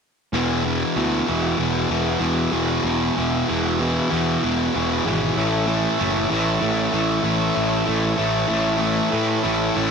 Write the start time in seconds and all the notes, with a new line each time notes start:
0.33 E1 E2 B2 E3
0.64 E2 B2 E3
0.96 D2 E2 B2 E3
1.27 E1 E2 B2 E3
1.58 E1 E2 B2 E3
1.90 E1 E2 B2 E3
2.20 E1 E2 B2 E3
2.52 E1 E2 B2 E3
2.84 E1 E2 B2 E3
3.16 E1 E2 B2 E3
3.47 E1 E2 B2 E3
3.80 E2 B2 E3
4.10 E2 B2 E3
4.43 E1 E2 B2 E3
4.75 E1 E2 B2 E3
5.06 G#1 E2 B2 E3
5.36 A1 A2 E3 A3 A4 C#5 E5
5.67 A2 E3 A3
5.98 F#1 A2 E3 A3
6.29 A1 A2 E3 A3
6.61 A1 A2 E3 A3
6.92 A1 A2 E3 A3
7.23 A1 A2 E3 A3
7.54 A1 A2 E3 A3
7.86 A1 A2 E3 A3
8.17 A1 A2 E3 A3
8.47 A1 A2 E3 A3
8.78 A2 E3 A3
9.11 A2 E3 A3
9.44 A1 A2 E3 A3
9.75 A1 A2 E3 A3